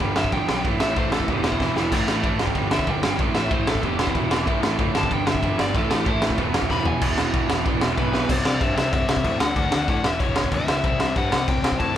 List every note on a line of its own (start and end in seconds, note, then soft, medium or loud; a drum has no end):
0.00 0.31 G1 medium
0.00 0.15 G2 medium
0.00 0.15 D3 loud
0.00 0.16 G3 loud
0.00 kick medium
0.16 0.32 G2 loud
0.16 0.32 D3 loud
0.16 0.31 G3 loud
0.16 0.32 E5 loud
0.16 snare loud
0.24 kick medium
0.32 0.48 G1 medium
0.32 0.47 G2 medium
0.32 0.48 D3 medium
0.32 0.48 G3 medium
0.32 0.64 G5 medium
0.32 kick loud
0.32 ride medium
0.48 0.64 B1 medium
0.48 0.63 G2 medium
0.48 0.64 D3 medium
0.48 0.64 G3 loud
0.48 snare loud
0.65 0.80 A1 loud
0.65 0.80 A2 loud
0.65 0.79 E3 loud
0.65 0.79 A3 loud
0.65 kick loud
0.65 ride medium
0.80 0.96 A1 medium
0.80 0.95 A2 medium
0.80 0.96 E3 loud
0.80 0.96 A3 loud
0.80 0.96 E5 medium
0.80 snare loud
0.96 1.12 A1 medium
0.96 1.12 A2 medium
0.96 1.11 E3 loud
0.96 1.11 A3 loud
0.96 1.12 C5 medium
0.96 kick loud
0.96 ride medium
1.12 1.28 A1 medium
1.12 1.28 A2 medium
1.12 1.27 E3 medium
1.12 1.27 A3 medium
1.12 1.29 A4 medium
1.12 snare loud
1.20 kick medium
1.28 1.59 E1 medium
1.28 1.45 E2 medium
1.28 1.44 B2 loud
1.28 1.43 E3 loud
1.28 1.46 G4 medium
1.28 kick medium
1.28 ride medium
1.44 1.60 E2 medium
1.44 1.60 B2 loud
1.44 1.61 E3 loud
1.44 2.07 E4 loud
1.44 snare loud
1.52 kick medium
1.60 1.75 E1 loud
1.60 1.76 E2 medium
1.60 1.75 B2 medium
1.60 1.74 E3 loud
1.60 kick loud
1.60 snare medium
1.75 1.91 E1 medium
1.75 1.91 E2 medium
1.75 1.91 B2 medium
1.75 1.91 E3 medium
1.75 snare medium
1.92 2.07 A1 loud
1.92 2.08 A2 loud
1.92 2.07 E3 loud
1.92 2.07 A3 loud
1.92 kick medium
1.92 crash loud
1.92 splash medium
2.08 2.23 A1 medium
2.08 2.23 A2 medium
2.08 2.24 E3 medium
2.08 2.23 A3 loud
2.08 snare loud
2.24 2.38 A1 medium
2.24 2.39 A2 loud
2.24 2.39 E3 loud
2.24 2.39 A3 loud
2.24 kick loud
2.24 ride medium
2.39 2.54 G1 medium
2.39 2.56 G2 medium
2.39 2.55 D3 loud
2.39 2.54 G3 loud
2.39 snare medium
2.47 kick medium
2.55 2.86 G1 medium
2.55 2.70 G2 medium
2.55 2.71 D3 medium
2.55 2.71 G3 loud
2.55 kick loud
2.55 ride medium
2.71 2.88 G2 loud
2.71 2.87 D3 loud
2.71 2.87 G3 loud
2.71 2.90 E5 medium
2.71 snare loud
2.79 kick medium
2.87 3.03 G1 medium
2.87 3.03 G2 medium
2.87 3.03 D3 medium
2.87 3.04 G3 medium
2.87 3.20 G5 loud
2.87 kick loud
2.87 ride medium
3.03 3.19 G1 medium
3.03 3.19 G2 medium
3.03 3.19 D3 medium
3.03 3.19 G3 loud
3.03 snare loud
3.19 3.35 A1 loud
3.19 3.35 A2 loud
3.19 3.35 E3 loud
3.19 3.34 A3 loud
3.19 kick loud
3.19 ride medium
3.35 3.50 A1 medium
3.35 3.50 A2 medium
3.35 3.50 E3 medium
3.35 3.50 A3 loud
3.35 3.51 E5 medium
3.35 snare loud
3.51 3.66 A1 medium
3.51 3.67 A2 loud
3.51 3.66 E3 loud
3.51 3.66 A3 loud
3.51 3.68 C5 medium
3.51 kick loud
3.51 ride medium
3.67 3.82 A1 medium
3.67 3.83 A2 medium
3.67 3.83 E3 medium
3.67 3.82 A3 loud
3.67 3.85 A4 medium
3.67 snare loud
3.75 kick medium
3.83 4.14 E1 medium
3.83 3.99 E2 medium
3.83 3.99 B2 loud
3.83 3.99 E3 loud
3.83 4.00 G4 medium
3.83 kick medium
3.83 ride medium
3.99 4.14 E2 loud
3.99 4.15 B2 loud
3.99 4.15 E3 loud
3.99 4.62 E4 loud
3.99 snare loud
4.07 kick medium
4.15 4.30 E1 loud
4.15 4.30 E2 medium
4.15 4.30 B2 medium
4.15 4.29 E3 loud
4.15 kick loud
4.15 ride medium
4.30 4.47 E1 medium
4.30 4.46 E2 medium
4.30 4.46 B2 medium
4.30 4.46 E3 loud
4.30 snare loud
4.46 4.62 A1 medium
4.46 4.62 A2 loud
4.46 4.62 E3 medium
4.46 4.61 A3 loud
4.46 kick loud
4.46 ride medium
4.62 4.78 A1 medium
4.62 4.77 A2 medium
4.62 4.78 E3 medium
4.62 4.78 A3 loud
4.62 snare loud
4.79 4.94 F#1 medium
4.79 4.94 A2 medium
4.79 4.94 E3 loud
4.79 4.94 A3 loud
4.79 kick loud
4.79 ride medium
4.94 5.10 G1 loud
4.94 5.10 G2 loud
4.94 5.09 D3 medium
4.94 5.09 G3 loud
4.94 5.11 A5 medium
4.94 snare loud
5.03 kick loud
5.10 5.42 G1 medium
5.10 5.25 G2 medium
5.10 5.25 D3 medium
5.10 5.26 G3 medium
5.10 5.30 G5 medium
5.10 kick loud
5.10 ride medium
5.26 5.41 G2 loud
5.26 5.41 D3 loud
5.26 5.40 G3 loud
5.26 5.59 E5 loud
5.26 snare loud
5.35 kick medium
5.41 5.58 G1 loud
5.41 5.55 G2 medium
5.41 5.57 D3 medium
5.41 5.57 G3 loud
5.41 kick loud
5.41 ride medium
5.57 5.74 G1 medium
5.57 5.73 G2 loud
5.57 5.73 D3 medium
5.57 5.73 G3 loud
5.57 5.75 D5 medium
5.57 snare loud
5.73 5.90 A1 loud
5.73 5.89 A2 medium
5.73 5.88 E3 loud
5.73 5.88 A3 loud
5.73 5.93 A4 loud
5.73 kick loud
5.73 ride medium
5.89 6.06 A1 medium
5.89 6.05 A2 medium
5.89 6.05 E3 loud
5.89 6.06 A3 loud
5.89 snare loud
5.93 6.08 G4 loud
6.06 6.21 A1 medium
6.06 6.22 A2 loud
6.06 6.21 E3 loud
6.06 6.21 A3 loud
6.06 6.23 E4 loud
6.06 kick loud
6.06 ride medium
6.22 6.37 A1 medium
6.22 6.38 A2 medium
6.22 6.37 E3 medium
6.22 6.37 A3 medium
6.22 snare loud
6.30 kick medium
6.38 6.69 E1 medium
6.38 6.54 E2 loud
6.38 6.53 B2 loud
6.38 6.52 E3 loud
6.38 kick loud
6.38 ride medium
6.53 6.67 E2 medium
6.53 6.68 B2 loud
6.53 6.69 E3 loud
6.53 snare loud
6.62 kick loud
6.68 6.86 E1 loud
6.68 6.85 E2 medium
6.68 6.84 B2 loud
6.68 6.84 E3 loud
6.68 6.86 B5 loud
6.68 kick medium
6.68 snare medium
6.85 7.01 E1 loud
6.85 6.99 E2 medium
6.85 7.01 B2 loud
6.85 7.00 E3 loud
6.85 7.02 G#5 loud
6.85 floor tom medium
7.01 7.15 E1 loud
7.01 7.17 E2 loud
7.01 7.16 B2 medium
7.01 7.15 E3 loud
7.01 kick loud
7.01 crash loud
7.17 7.31 E1 medium
7.17 7.31 E2 medium
7.17 7.32 B2 medium
7.17 7.33 E3 loud
7.17 snare loud
7.33 7.47 E1 medium
7.33 7.49 E2 medium
7.33 7.48 B2 loud
7.33 7.47 E3 loud
7.33 kick loud
7.33 ride medium
7.48 7.62 E1 medium
7.48 7.64 E2 medium
7.48 7.65 B2 loud
7.48 7.65 E3 loud
7.48 snare loud
7.65 7.79 E1 loud
7.65 7.81 E2 loud
7.65 7.81 B2 loud
7.65 7.80 E3 loud
7.65 kick loud
7.65 ride medium
7.81 7.95 E1 medium
7.81 7.95 E2 medium
7.81 7.96 B2 medium
7.81 7.96 E3 loud
7.81 snare loud
7.96 8.24 B1 medium
7.96 8.13 E2 loud
7.96 8.12 B2 medium
7.96 8.12 E3 loud
7.96 8.31 B4 medium
7.96 kick loud
7.96 ride medium
8.13 8.29 E2 medium
8.13 8.28 B2 medium
8.13 8.28 E3 loud
8.13 snare medium
8.29 8.43 C2 loud
8.29 8.45 C3 medium
8.29 8.44 G3 loud
8.29 8.43 C4 loud
8.29 8.36 C5 medium
8.29 kick loud
8.29 crash loud
8.29 crash medium
8.44 8.59 C2 medium
8.44 8.59 C3 medium
8.44 8.60 G3 loud
8.44 8.60 C4 loud
8.44 8.61 D5 medium
8.44 snare loud
8.61 8.75 G2 loud
8.61 8.76 C3 medium
8.61 8.76 G3 medium
8.61 8.75 C4 medium
8.61 8.76 E5 medium
8.61 kick loud
8.61 crash medium
8.76 8.90 C2 loud
8.76 8.91 C3 medium
8.76 8.92 G3 medium
8.76 8.93 C4 loud
8.76 8.92 E5 medium
8.76 snare loud
8.93 9.07 C2 loud
8.93 9.08 C3 medium
8.93 9.08 G3 medium
8.93 9.07 C4 loud
8.93 9.40 E5 medium
8.93 kick loud
8.93 crash medium
9.08 9.23 C2 medium
9.08 9.22 C3 loud
9.08 9.23 G3 loud
9.08 9.23 C4 loud
9.08 snare loud
9.16 kick medium
9.24 9.39 A2 loud
9.24 9.38 C3 loud
9.24 9.39 G3 loud
9.24 9.40 C4 loud
9.24 kick loud
9.24 crash medium
9.39 9.55 D2 loud
9.39 9.56 D3 loud
9.39 9.55 A3 loud
9.39 9.55 D4 loud
9.39 9.55 F#5 medium
9.39 snare loud
9.56 9.70 D2 loud
9.56 9.70 D3 medium
9.56 9.70 A3 loud
9.56 9.71 D4 loud
9.56 9.88 F#5 loud
9.56 kick loud
9.56 crash medium
9.71 9.86 D2 loud
9.71 9.87 D3 medium
9.71 9.87 A3 medium
9.71 9.86 D4 loud
9.71 snare loud
9.88 10.02 A2 loud
9.88 10.03 D3 medium
9.88 10.03 A3 loud
9.88 10.03 D4 loud
9.88 10.05 F#5 loud
9.88 kick loud
9.88 crash medium
10.03 10.18 E1 loud
10.03 10.19 E2 loud
10.03 10.19 B2 loud
10.03 10.18 E3 loud
10.03 10.20 E5 medium
10.03 snare loud
10.19 10.34 E1 medium
10.19 10.33 E2 medium
10.19 10.34 B2 loud
10.19 10.35 E3 loud
10.19 10.53 C#5 medium
10.19 kick loud
10.19 crash medium
10.35 10.50 E1 medium
10.35 10.51 E2 loud
10.35 10.51 B2 loud
10.35 10.50 E3 loud
10.35 snare loud
10.44 kick medium
10.51 10.66 D2 loud
10.51 10.66 E2 medium
10.51 10.67 B2 medium
10.51 10.67 E3 medium
10.51 10.85 E5 loud
10.51 kick loud
10.51 crash medium
10.67 10.82 C#2 medium
10.67 10.83 E2 loud
10.67 10.83 B2 loud
10.67 10.83 E3 loud
10.67 snare loud
10.83 10.98 C2 loud
10.83 10.99 C3 loud
10.83 10.99 G3 loud
10.83 10.99 C4 loud
10.83 11.17 E5 loud
10.83 kick loud
10.83 crash medium
10.99 11.13 C2 medium
10.99 11.14 C3 medium
10.99 11.15 G3 medium
10.99 11.15 C4 medium
10.99 snare loud
11.15 11.30 G2 loud
11.15 11.31 C3 medium
11.15 11.31 G3 loud
11.15 11.30 C4 medium
11.15 11.48 F#5 loud
11.15 kick medium
11.15 crash medium
11.31 11.45 C2 loud
11.31 11.46 C3 medium
11.31 11.47 G3 loud
11.31 11.47 C4 loud
11.31 snare loud
11.47 11.61 C2 medium
11.47 11.63 C3 loud
11.47 11.62 G3 loud
11.47 11.62 C4 loud
11.47 11.79 G5 medium
11.47 kick loud
11.47 crash medium
11.62 11.77 C2 medium
11.62 11.78 C3 loud
11.62 11.78 G3 loud
11.62 11.78 C4 loud
11.62 snare loud
11.72 kick medium
11.79 11.94 A2 loud
11.79 11.94 C3 loud
11.79 11.94 G3 loud
11.79 11.95 C4 medium
11.79 11.96 A5 loud
11.79 kick loud
11.79 crash medium